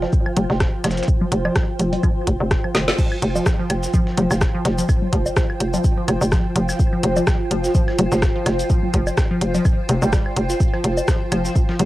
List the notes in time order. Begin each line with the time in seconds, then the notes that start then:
Already playing: F4 C5 G5
0.02 F3, snare, low woodblock
0.13 kick, shaker
0.26 F3, high woodblock
0.37 F1, closed hi-hat, low conga, shaker
0.50 F1, snare, low woodblock
0.60 F3, kick, cross-stick, snare, closed hi-hat, shaker
0.84 F1 F3, snare, closed hi-hat, high woodblock, low woodblock, shaker
0.91 snare, shaker
0.97 snare, shaker
1.03 snare, shaker
1.08 kick, shaker
1.21 F3, low conga
1.32 F1, closed hi-hat, shaker
1.45 F3, high woodblock, low woodblock
1.56 kick, cross-stick, snare, closed hi-hat, shaker
1.79 F1 F3, closed hi-hat, shaker
1.93 closed hi-hat, low conga, low woodblock
2.03 F3, kick, high woodblock, shaker
2.27 F1, kick, closed hi-hat, shaker
2.40 F1 C4, low woodblock
2.51 kick, cross-stick, snare, closed hi-hat, shaker
2.64 F3, high woodblock
2.75 F1 D#3, snare, closed hi-hat, shaker
2.88 snare, low woodblock
2.98 F3, kick, crash, cabasa, shaker
3.12 high woodblock
3.22 F1, closed hi-hat, shaker
3.36 F3, cabasa, low woodblock
3.46 kick, cross-stick, snare, cabasa, shaker
3.59 F3
3.70 F1, closed hi-hat, high woodblock, shaker
3.83 snare, cabasa
3.94 F3, kick, cabasa, shaker
4.07 snare
4.18 F1 F3, closed hi-hat, low conga, shaker
4.31 F1, snare, cabasa, high woodblock
4.41 kick, cross-stick, snare, cabasa, shaker
4.55 F3
4.65 F1, snare, closed hi-hat, low woodblock, shaker
4.78 F3, closed hi-hat, cabasa
4.89 kick, cabasa, high woodblock, shaker
5.02 low conga
5.13 F1 F3, kick, closed hi-hat, shaker
5.26 cabasa, low woodblock
5.37 F3, kick, cross-stick, snare, cabasa, shaker
5.50 high woodblock
5.60 F1, closed hi-hat, shaker
5.74 F3, closed hi-hat, low conga, cabasa, low woodblock
5.84 kick, cabasa, shaker
5.97 F3
6.08 F1, closed hi-hat, high woodblock, shaker
6.21 F1, cabasa, low woodblock
6.32 F3, kick, cross-stick, snare, cabasa, shaker
6.56 F1 F3, closed hi-hat, shaker
6.69 snare, cabasa, high woodblock
6.79 kick, cabasa, shaker
6.93 F3
7.03 F1, closed hi-hat, shaker
7.17 F3, cabasa, low woodblock
7.27 kick, cross-stick, snare, cabasa, high woodblock, shaker
7.51 F1 F3, closed hi-hat, shaker
7.64 snare, cabasa
7.75 F3, kick, cabasa, shaker
7.88 snare, high woodblock
7.98 F1, closed hi-hat, low conga, shaker
8.12 F1 F3, snare, cabasa
8.22 kick, cross-stick, snare, cabasa, shaker
8.36 F3
8.46 F1, snare, closed hi-hat, high woodblock, low woodblock, shaker
8.59 closed hi-hat, cabasa
8.70 F3, kick, cabasa, shaker
8.83 low conga
8.94 F1 F3, kick, closed hi-hat, shaker
9.07 cabasa, high woodblock, low woodblock
9.17 kick, cross-stick, snare, cabasa, shaker
9.31 F3
9.41 F1, closed hi-hat, shaker
9.55 F3, closed hi-hat, low conga, cabasa, low woodblock
9.65 kick, cabasa, high woodblock, shaker
9.89 F1 C3, closed hi-hat, shaker
10.02 F1 G3, cabasa, low woodblock
10.13 G3, kick, cross-stick, snare, closed hi-hat, cabasa, shaker
10.26 high woodblock
10.37 F1, closed hi-hat, shaker
10.50 F4, snare, cabasa
10.60 kick, cabasa, shaker
10.74 F3, high woodblock
10.84 F1, closed hi-hat, shaker
10.97 cabasa, low woodblock
11.08 F3, kick, cross-stick, snare, cabasa, shaker
11.32 F1 F3, closed hi-hat, high woodblock, shaker
11.45 snare, cabasa
11.56 kick, cabasa, shaker
11.69 F3, snare
11.79 F1, closed hi-hat, low conga, shaker